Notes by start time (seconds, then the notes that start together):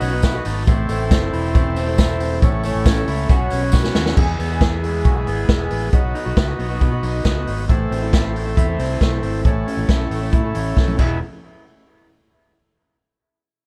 Already playing: B2 F#3 B3 D#4 F#4 B4
0.01 B1 C#4 F#5, open hi-hat, tambourine
0.12 B3 D#4 F#4
0.22 E4 F#5, kick, snare, closed hi-hat, tambourine
0.33 B3 D#4 F#4
0.45 G#1 D#4 A5, open hi-hat, tambourine
0.67 A1 A2 E3 A3 C4 E4 A4 C5, kick, closed hi-hat, tambourine
0.89 A1 E3 A3 C4 E4, open hi-hat, tambourine
1.11 C4, kick, snare, closed hi-hat, tambourine
1.21 A3 C4 E4
1.33 E1 E4, open hi-hat
1.54 A2 E3 A3 C4 E4, kick, closed hi-hat, tambourine
1.76 C4, open hi-hat, tambourine
1.87 A3 C4 E4
1.98 E4, kick, snare, closed hi-hat, tambourine
2.10 A3 C4 E4
2.20 C4, open hi-hat, tambourine
2.42 A1 A2 E3 A3 C#4 E4 A4 C#5, kick, closed hi-hat, tambourine
2.63 E3 A3 C#4 E4, open hi-hat, tambourine
2.75 A1
2.86 C#4, kick, snare, closed hi-hat, tambourine
2.96 A3 C#4 E4
3.07 C#2 E4, open hi-hat, tambourine
3.29 B1 B2 F#3 B3 C#4 F#4 B4 C#5, kick, closed hi-hat, tambourine
3.50 B1 C#4, open hi-hat, tambourine
3.62 B3 C#4 F#4
3.72 F#4, kick, snare, tambourine
3.83 B3 C#4 F#4, snare
3.95 D#2 C#4, snare, tambourine
4.06 snare
4.16 E2 E3 G#3 B3 E4 G#4 B4, kick, crash
4.39 E2 B3, open hi-hat
4.50 E3 G#3 B3 G#4
4.61 G#4, kick, snare, closed hi-hat
4.83 G#3, open hi-hat
4.93 E3 G#3 B3 G#4
5.05 B1 F#4, kick, closed hi-hat
5.15 E3 G#3 B3 G#4
5.27 G#1 B3, open hi-hat
5.49 E1 G#3, kick, snare, closed hi-hat
5.59 E3 G#3 B3 G#4
5.70 A1 B3, open hi-hat
5.92 B1 B2 F#3 B3 D#4 F#4 B4, kick, closed hi-hat
6.15 D#4, open hi-hat
6.25 B1 B3 D#4 F#4
6.37 C#2 E4, kick, snare, closed hi-hat
6.48 F#4
6.59 B1 B3, open hi-hat
6.69 B3 D#4 F#4
6.81 B2 F#4, kick, closed hi-hat
6.91 B3 D#4 F#4
7.03 B1 D#4, open hi-hat
7.25 C#2 B3, kick, snare, closed hi-hat
7.36 B3 D#4 F#4
7.47 G#1 D#4, open hi-hat
7.69 A1 A2 E3 A3 C4 E4 A4 C5, kick, closed hi-hat
7.91 A1 C4, open hi-hat
8.02 A3 C4 E4
8.13 E4, kick, snare, closed hi-hat
8.35 A3, open hi-hat
8.45 A3 C4 E4
8.57 E2 E4, kick, closed hi-hat
8.68 A3 C4 E4
8.78 C2 C4, open hi-hat
9.01 B1 A3, kick, snare, closed hi-hat
9.11 A3 C4 E4
9.23 G#1 C4, open hi-hat
9.44 A1 A2 E3 A3 C#4 E4 A4 C#5, kick, closed hi-hat
9.67 C#4, open hi-hat
9.77 A1 A3 C#4 E4
9.89 B1 E4, kick, snare, closed hi-hat
10.11 A1 A3, open hi-hat
10.21 A3 C#4 E4
10.32 A2 E4, kick, closed hi-hat
10.43 A3 C#4 E4
10.55 A1 C#4, open hi-hat
10.76 B1 A3, kick, snare
10.87 A3 C#4 E4, high tom
10.97 E1 E2 B2 E3 G#3 B3 E4 G#4 B4, kick, crash